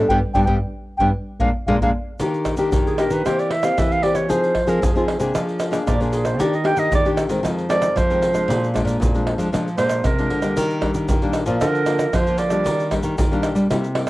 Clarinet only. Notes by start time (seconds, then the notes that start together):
2.87 G#4
2.99 A#4
3.12 B4
3.26 C5
3.40 D5
3.51 E5
3.65 F5
3.79 E5
3.93 F5
4.03 D5
4.15 C#5
4.30 C5
4.69 A#4
4.84 G#4
4.97 F4
5.87 D5
6.01 F4
6.13 G#4
6.25 C5
6.40 D5
6.55 D#5
6.66 G5
6.79 D#5
6.95 D5
7.70 D5
7.97 C5
9.78 C5
10.05 A#4
11.61 A#4
12.15 C5
12.39 D5